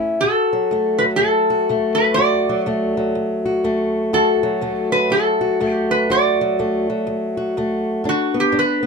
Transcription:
Already playing: A2 A3 C#4 E4
0.21 D2 F#4 A4
0.53 F#3
0.71 D2 A3
0.98 F#3 B4
1.16 D2 A4
1.50 F#4
1.69 D2 A3
1.95 B4
2.14 D2 F#4 D5
2.49 F#3
2.66 D2 A3
2.97 F#3
3.15 D2
3.46 F#4
3.64 D2 A3
4.13 D2 F#4 A4
4.43 F#3
4.61 D2 A3
4.92 F#3 B4
5.10 D2 A4
5.41 F#4
5.60 D2 A3
5.72 G4
5.91 B4
6.10 D2 F#4 D5
6.41 F#3
6.59 D2 A3
6.90 F#3
7.07 D2
7.37 F#4
7.57 D2 A3
8.04 G2 D4
8.09 F#4
8.34 B3
8.40 G4
8.52 G2 D4
8.59 B4
8.83 B3

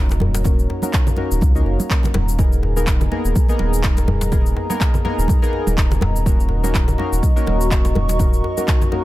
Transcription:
Already playing: D#1 A#3 C#4 D#4 F#4 A#4 C#5 D#5 A#5
0.09 muted conga, djembe slap, shaker
0.20 high conga, djembe tone, djembe bass
0.34 djembe slap, high conga, shaker
0.44 A#3 C#4 D#4 F#4 A#4 F5, kick, muted conga, low conga, shaker
0.59 shaker
0.70 djembe tone
0.82 A#3 C#4 D#4 F#4 A#4, muted conga, high conga, shaker
0.93 kick, clap, shaker
1.07 djembe tone, low conga, shaker
1.16 A#3 C#4 D#4 F#4 A#4, muted conga, djembe tone
1.32 D#1, shaker
1.41 C#2, kick, high conga, djembe tone, shaker
1.55 A#3 C#4 D#4 F#4 A#4, muted conga, shaker
1.66 F#1, djembe tone
1.80 high conga, shaker
1.90 A#3 C#4 D#4 F#4 A#4, kick, clap, shaker
2.03 muted conga, djembe slap, high conga, low conga, shaker
2.14 D#1, djembe slap, high conga, djembe bass
2.29 shaker
2.38 A#3 B3 D#4 G#4 A#4 D#5, kick, muted conga, low conga, shaker
2.52 shaker
2.63 djembe tone
2.76 A#3 B3 D#4 G#4 A#4, muted conga, high conga, shaker
2.87 kick, clap, shaker
3.01 djembe tone, low conga, shaker
3.12 A#3 B3 D#4 G#4 A#4, muted conga, djembe tone
3.25 D#1, shaker
3.36 kick, high conga, shaker
3.48 A#3 B3 D#4 G#4 A#4, muted conga, shaker
3.59 D#1, djembe slap, high conga, djembe tone
3.73 shaker
3.83 A#3 B3 D#4 G#4 A#4, kick, clap, shaker
3.97 muted conga, djembe slap, shaker
4.08 high conga, djembe tone, djembe bass
4.21 djembe slap, high conga, shaker
4.32 A#3 B3 D#4 G#4 A#4, kick, muted conga, low conga, shaker
4.46 shaker
4.57 djembe tone
4.70 A#3 B3 D#4 G#4 A#4, muted conga, high conga, shaker
4.81 kick, clap, shaker
4.94 djembe tone, low conga, shaker
5.04 A#3 B3 D#4 G#4 A#4, muted conga, djembe tone
5.18 D#1, shaker
5.28 kick, high conga, djembe tone, shaker
5.42 A#3 B3 D#4 G#4 A#4, muted conga, shaker
5.53 djembe tone
5.67 D#1, high conga, shaker
5.77 A#3 B3 D#4 G#4 A#4, kick, clap, shaker
5.91 djembe slap, muted conga, high conga, low conga, shaker
6.01 D#1, djembe slap, high conga, djembe bass
6.16 shaker
6.26 A#3 C#4 D#4 F#4 A#4 C#6, kick, muted conga, low conga, shaker
6.40 shaker
6.49 djembe tone
6.63 A#3 C#4 D#4 F#4 A#4, muted conga, high conga, shaker
6.75 kick, clap, shaker
6.88 djembe tone, low conga, shaker
6.98 A#3 C#4 D#4 F#4 A#4, muted conga, djembe tone
7.12 D#1, shaker
7.23 kick, high conga, shaker
7.36 A#3 C#4 D#4 F#4 A#4, muted conga, shaker
7.47 D#1, djembe slap, djembe tone, high conga
7.61 shaker
7.71 A#3 C#4 D#4 F#4 A#4, kick, clap, shaker
7.85 muted conga, djembe slap, shaker
7.95 djembe tone, high conga, djembe bass
8.09 djembe slap, high conga, shaker
8.19 A#3 C#4 D#4 F#4 A#4, kick, muted conga, low conga, shaker
8.33 shaker
8.44 djembe tone
8.57 A#3 C#4 D#4 F#4 A#4, muted conga, high conga, shaker
8.68 kick, clap, shaker
8.81 djembe tone, low conga, shaker
8.92 A#3 C#4 D#4 F#4 A#4, muted conga, djembe tone

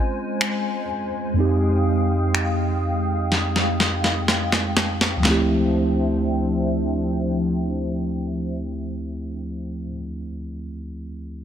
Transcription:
Already playing: G#3 C4 C#4 F4 C5 G#5
0.41 finger snap
1.34 F2 G#3 C4 F5 G5 D#6
1.39 D#4 G4
2.35 finger snap
3.32 snare
3.56 snare
3.80 snare
4.04 snare
4.28 snare
4.52 snare
4.77 snare
5.01 snare
5.17 D2 F3
5.23 F3 A3 C4 D4 C5 E5 G5, snare, clap
5.28 E4 G4

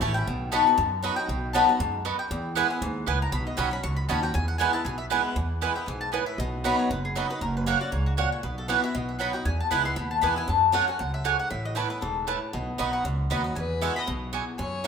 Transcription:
Already playing: E2
0.01 A1 E3 A3 C#4 E4 C#5 A5
0.14 C#4 E4 G5
0.27 B1 B2
0.52 F#3 B3 D#4 F#4 D#5 A5 B5
0.67 D#4 F#4
0.78 F#2
1.03 F#3 B3 D#4 F#4 D#5 B5
1.16 D#4 F#4 G5
1.28 B1 B2
1.53 F#3 B3 D#4 F#4 D#5 A5 B5
1.69 D#4 F#4
1.80 F#2 G#2
2.05 F#2 B3 F#4 D#5 B5
2.19 G5
2.31 E2
2.55 E3 G#3 B3 E4 B4 G#5
2.70 B3 E4
2.82 D#2 G#2
3.06 C#2 A2 B3 E4 B4 G#5
3.22 A#5
3.32 B1 B2 B5
3.47 D#5
3.57 B1 B2 D#3 C#4 F#4 D#5 F#5 B5
3.71 C#4 F#4 B5
3.83 C#2 F#2 C#6
3.96 B5
4.09 D#2 B2 D#3 C#4 F#4 D#5 A5 B5
4.23 C#4 F#4 G5
4.34 E2 G#5
4.48 F#5
4.58 E3 G#3 B3 E4 B4 G#5
4.73 B3 E4 A5
4.85 B1 B2 G#5
4.98 E5
5.10 E3 G#3 B3 E4 B4 G#5
5.36 E2
5.61 E3 G#3 B3 E4 B4 G#5
5.76 B3 E4 G5
5.86 B1 G#2 G#5
6.01 A5
6.12 A2 B3 E4 B4 G#5
6.26 E5
6.38 B1 B2 D#5
6.64 F#3 B3 D#4 F#4 D#5 B5
6.79 C#5
6.90 F#1 F#2 B4
7.05 G#4
7.15 F#3 B3 D#4 F#4 A4 D#5 B5
7.30 D#4 F#4 B4
7.41 F#1 F#2 A#4
7.57 B4
7.66 F#3 A#3 C#4 F#4 C#5 F#5
7.81 C#4 F#4 D5
7.92 C#2 G#2 C#5
8.06 F#4
8.17 A#2 A#3 F#4 C#5 F#5
8.32 C#5
8.43 B1 B2 B4
8.58 A4
8.68 E3 B3 E4 F#4 B4 C#5 F#5
8.83 E4 F#4 E5
8.95 B1 B2 D#5
9.09 E5
9.19 F#3 B3 D#4 F#4 D#5 F#5 B5
9.33 D#4 F#4 G5
9.45 E2 G#5
9.60 A5
9.71 C#2 E3 G#3 B3 E4 B4 G#5 B5
9.85 B3 E4 C6
9.96 D#2 B2 B5
10.11 A5
10.21 E2 E3 G#3 B3 E4 B4 G#5 B5
10.36 B3 E4 G#5
10.48 F#2 A5
10.72 F#3 A3 C#4 F#4 C#5 F#5
10.88 C#4 F#4 G#5
10.99 C#2 F#2 F#5
11.14 E5
11.24 G#2 A3 F#4 C#5 F#5 G#5
11.39 F#5
11.50 A1 A2 E5
11.65 D#5
11.75 E3 A3 B3 E4 B4 C#5 A5
11.90 B3 E4 B4
12.01 E1 G#2 A4
12.27 A2 A3 E4 B4 A5
12.53 B1 B2 D#5
12.78 B1 F#3 B3 D#4 F#4 D#5 B5
12.93 F#5
13.04 C#2 F#2
13.30 D#2 F#3 B3 D#4 F#4 D#5 B5
13.44 D#4 F#4
13.55 E2 B4 G#5
13.81 E3 G#3 B3 F#4 E5 G#5
13.96 B3 F#4 D#5 B5
14.07 B1 B2
14.33 E2 B3 F#4 E5 G#5
14.58 F#2 C#5 G#5
14.84 F#3

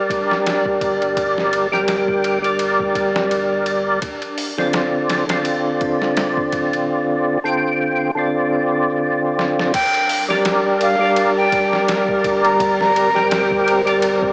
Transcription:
Already playing: G3 D4 G4 A#4 D5
0.10 kick, ride
0.31 snare
0.46 snare, ride
0.66 kick
0.81 G1, kick, ride
1.02 G1, ride
1.17 kick, ride
1.38 snare
1.53 ride
1.72 G1 G3 G4 A#4 G5, snare
1.88 snare, ride
2.08 kick
2.24 ride
2.42 G3 G4 A#4 D5, ride
2.59 ride
2.80 kick
2.95 G1, kick, ride
3.16 snare
3.31 ride
3.66 ride
4.02 kick, ride
4.22 ride
4.38 open hi-hat
4.58 D3 C4 F4 D5, snare
4.73 snare, ride
5.09 snare, ride
5.27 D3 C4 F4, snare, ride
5.31 D5
5.45 ride
5.81 kick, ride
6.02 snare
6.17 snare, ride
6.37 kick
6.52 D1, kick, ride
6.73 D1, ride
7.44 D3 C4 F4 G5
8.15 D3 C4 F4 D5
9.39 snare
9.59 snare
9.74 G3 D4 A#4 G5, kick, crash, ride
9.94 ride
10.09 open hi-hat
10.29 G3 G4 A#4 D5, snare
10.45 snare, ride
10.81 F5, ride
10.99 G3 G4 A#4
11.03 D5
11.16 ride
11.37 G5
11.52 kick, ride
11.73 snare
11.88 snare, ride
12.08 kick
12.24 G1, kick, ride
12.44 G1 A#5, ride
12.59 C4, kick, ride
12.81 A#5, snare
12.96 ride
13.14 G1 G3 G4 A#4 G5, snare
13.31 snare, ride
13.51 kick
13.68 ride
13.86 G3 G4 A#4 D5, ride
14.03 ride
14.23 kick

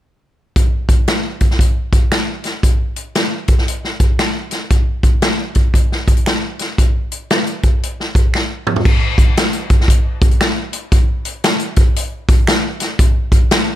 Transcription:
0.56 kick, closed hi-hat
0.89 kick, closed hi-hat
1.08 finger snap, snare, closed hi-hat
1.41 kick, closed hi-hat
1.51 snare
1.59 kick, closed hi-hat
1.93 kick, closed hi-hat
2.12 finger snap, snare, closed hi-hat
2.44 snare, closed hi-hat
2.63 kick, closed hi-hat
2.96 closed hi-hat
3.15 finger snap, snare, closed hi-hat
3.48 kick, closed hi-hat
3.58 snare
3.68 closed hi-hat
3.84 snare
4.00 kick, closed hi-hat
4.19 finger snap, snare, closed hi-hat
4.51 snare, closed hi-hat
4.70 kick, closed hi-hat
5.03 kick, closed hi-hat
5.22 finger snap, snare, closed hi-hat
5.55 kick, closed hi-hat
5.74 kick, closed hi-hat
5.92 snare
6.08 kick, closed hi-hat
6.17 closed hi-hat
6.26 finger snap, snare, closed hi-hat
6.59 snare, closed hi-hat
6.78 kick, closed hi-hat
7.12 closed hi-hat
7.30 finger snap, snare, closed hi-hat
7.47 closed hi-hat
7.63 kick, closed hi-hat
7.83 closed hi-hat
8.00 snare
8.15 kick, closed hi-hat
8.34 finger snap, snare
8.67 mid tom
8.76 floor tom
8.85 kick, crash
9.18 kick, closed hi-hat
9.37 finger snap, snare, closed hi-hat
9.53 closed hi-hat
9.70 kick, closed hi-hat
9.81 snare
9.88 kick, closed hi-hat
10.22 kick, closed hi-hat
10.31 closed hi-hat
10.41 finger snap, snare, closed hi-hat
10.73 closed hi-hat
10.92 kick, closed hi-hat
11.25 closed hi-hat
11.44 finger snap, snare, closed hi-hat
11.60 closed hi-hat
11.76 kick, closed hi-hat
11.96 closed hi-hat
12.29 kick, closed hi-hat
12.47 finger snap, snare, closed hi-hat
12.80 snare, closed hi-hat
12.99 kick, closed hi-hat
13.32 kick, closed hi-hat
13.51 finger snap, snare, closed hi-hat

